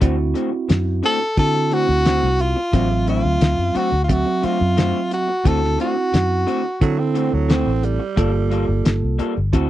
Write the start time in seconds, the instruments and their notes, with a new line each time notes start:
0.01 fingered electric bass D2, clean electric guitar D3 A3 C4 F#4, tine electric piano C4 E4 F#4, kick, closed hi-hat
0.18 muted clean electric guitar stroke
0.34 clean electric guitar D3 A3 C4 F#4, closed hi-hat
0.52 muted clean electric guitar stroke
0.69 fingered electric bass F#2, muted clean electric guitar stroke, snare, closed hi-hat
1.03 clean electric guitar D3 A3 C4 F#4, tenor saxophone A4, closed hi-hat
1.20 muted clean electric guitar stroke
1.37 fingered electric bass D3, tine electric piano C4 E4 F#4, tenor saxophone A4, kick, closed hi-hat
1.54 muted clean electric guitar stroke
1.71 clean electric guitar D3 A3 C4 F#4, tenor saxophone F#4, closed hi-hat
1.88 fingered electric bass D2, muted clean electric guitar stroke
2.05 clean electric guitar D3 A3 C4 F#4, snare, closed hi-hat
2.23 fingered electric bass C2
2.39 tenor saxophone F4, muted clean electric guitar stroke, closed hi-hat
2.56 muted clean electric guitar stroke
2.73 fingered electric bass A1, clean electric guitar D3 A3 C4 F#4, tine electric piano F#3 C4 E5, kick, closed hi-hat
2.90 muted clean electric guitar stroke
3.07 clean electric guitar D3 A3 C4 F#4, tenor saxophone F4, closed hi-hat
3.24 fingered electric bass D2, muted clean electric guitar stroke
3.41 fingered electric bass D2, muted clean electric guitar stroke, snare, closed hi-hat
3.59 fingered electric bass F#2
3.75 clean electric guitar D3 A3 C4 F#4, tenor saxophone F#4, muted fingered electric bass stroke, closed hi-hat
3.92 fingered electric bass D2, muted clean electric guitar stroke
4.04 tenor saxophone F4
4.09 tine electric piano F#3 C4 E5, tenor saxophone F#4, kick, closed hi-hat
4.26 muted clean electric guitar stroke
4.42 clean electric guitar D3 A3 C4 F#4, tenor saxophone F4, muted fingered electric bass stroke, closed hi-hat
4.60 fingered electric bass F#2, muted clean electric guitar stroke
4.77 clean electric guitar D3 A3 C4 F#4, snare, closed hi-hat
5.11 tenor saxophone F#4, muted clean electric guitar stroke, closed hi-hat
5.28 muted clean electric guitar stroke
5.44 fingered electric bass D2, clean electric guitar D3 A3 C4 F#4, tine electric piano C4 E4 F#4, tenor saxophone A4, kick, closed hi-hat
5.62 muted clean electric guitar stroke, snare
5.78 clean electric guitar D3 A3 C4 F#4, tenor saxophone F#4, closed hi-hat
5.96 muted clean electric guitar stroke
6.13 fingered electric bass F#2, muted clean electric guitar stroke, snare, closed hi-hat
6.47 clean electric guitar D3 A3 C4 F#4, closed hi-hat
6.64 muted clean electric guitar stroke
6.81 fingered electric bass D3, tenor saxophone F#3, tine electric piano C4 E4 A4, kick, closed hi-hat
6.98 tenor saxophone C4, muted clean electric guitar stroke
7.14 clean electric guitar D3 A3 C4 F#4, closed hi-hat
7.32 fingered electric bass D2, tenor saxophone F#3, muted clean electric guitar stroke
7.49 clean electric guitar D3 A3 C4 F#4, tenor saxophone C4, snare, closed hi-hat
7.67 fingered electric bass A1
7.83 tenor saxophone G3, muted clean electric guitar stroke, closed hi-hat
7.99 muted clean electric guitar stroke
8.16 fingered electric bass G1, clean electric guitar G3 A#3 F4 A4, tine electric piano A#3 F4 A4, kick, closed hi-hat
8.34 muted clean electric guitar stroke
8.50 clean electric guitar G3 A#3 F4 A4, closed hi-hat
8.68 fingered electric bass G1, muted clean electric guitar stroke
8.85 fingered electric bass G1, muted clean electric guitar stroke, snare, closed hi-hat
9.03 fingered electric bass C2
9.19 clean electric guitar G3 A#3 F4 A4, muted fingered electric bass stroke, closed hi-hat
9.36 fingered electric bass G1, muted clean electric guitar stroke
9.53 fingered electric bass D2, clean electric guitar D3 C4 F#4 A4, tine electric piano C4 E4 F#4, kick, closed hi-hat